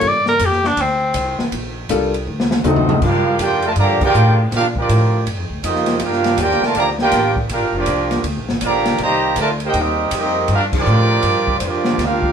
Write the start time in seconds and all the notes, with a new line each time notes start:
0.01 G2, kick, ride
0.08 D5
0.26 A#4, snare
0.39 F2, kick, hi-hat pedal, ride
0.45 G4
0.52 snare
0.64 D4, snare
0.77 D2, kick, ride
0.81 C4
1.14 C2, kick, hi-hat pedal, ride
1.39 muted upright bass stroke, snare
1.52 A#1, kick, ride
1.89 C2 G3 A#3 D4 F4 A4, kick, hi-hat pedal, ride
2.14 ride
2.27 D2
2.40 snare
2.51 snare
2.64 D#2 F#3 A3 C4 D4 D#4 F#4 A4 D#5, hi-hat pedal, mid tom
2.76 floor tom
2.89 floor tom
3.01 G2 A#3 D4 F4, kick, crash
3.06 D4 G4 A#4 F5
3.39 F2 A#3 D4 F4 G4 A#4 D5 G5, kick, hi-hat pedal, ride
3.62 A3 F4 A#4 D5 A5, ride
3.76 G2 D3 F3 A#3 G4 D5 F5 A#5, kick, ride
4.01 A#3 D4 G4 G5, muted upright bass stroke, kick, crash
4.05 F4 A#4 D5
4.14 A2, hi-hat pedal
4.51 A#2 A#3 D4 F5, kick, snare, ride
4.55 D4 F4 G4 A#4
4.76 F3 D4 F4 G4 A#4 D5, kick
4.89 A2, kick, hi-hat pedal, ride
5.26 G2, kick, ride
5.38 F2
5.50 D2
5.63 F2 F3 A#3 D#4 F4 G4 D#5, kick, hi-hat pedal, ride
5.75 snare
5.86 snare, ride
5.99 G2 A#3 D4 F4, kick, ride
6.04 D4 G4 A#4 F5
6.13 snare
6.24 snare, ride
6.37 D#2 A#3 D4 G4 G5, kick, hi-hat pedal, ride
6.41 F4 A#4 D5
6.51 snare
6.61 A3 F4 A5, muted upright bass stroke, snare
6.65 A#4 D5
6.74 D2 D3 F3 A#3 G4 D5 F5 A#5, kick, ride
6.99 A#3 D4 F4 G4 A#4 D5 G5, snare
7.11 A1, kick, snare, hi-hat pedal, ride
7.36 kick
7.49 A#1 A#3 D4 G4 A#4 F5, kick, ride
7.53 D4 F4
7.60 G1
7.72 F1
7.76 F3 A#3 D4 F4 G4 D5
7.86 C2, kick, hi-hat pedal, ride
8.11 snare, ride
8.24 D2, kick, ride
8.37 A#1
8.49 G1, snare
8.61 A#1 D3 F3 A#3, kick, hi-hat pedal, ride
8.65 G4 D5 F5 A#5
8.85 snare, ride
8.98 C2 D#3 G3 A#3, kick, ride
9.02 G4 C5 D#5 A#5
9.36 D2, kick, hi-hat pedal, ride
9.40 A3 F4 A#4 D5 A5
9.60 ride
9.64 A#3 D#4 G4 A#4 C5 G5
9.74 D#2 G3 A#3 D#4, kick, ride
9.78 C4 G4 A#4 D#5
10.11 F2 G3 A#3 D#4, kick, hi-hat pedal, ride
10.18 C4 G4 A#4 D#5
10.48 G2 A#3, kick, ride
10.52 D4 F4 G4 A#4 F5
10.73 F3 D4 A#4, kick, crash
10.79 F4 G4 A#4 D5
10.85 A2, hi-hat pedal
11.22 G2, kick, ride
11.47 kick
11.59 F2 C5, kick, hi-hat pedal, ride
11.65 F3 A#3 D4 F4 G4 D5
11.84 snare
11.98 D2, kick, snare, ride
12.03 A#3 D4 F4 G4 A#4 F5
12.22 kick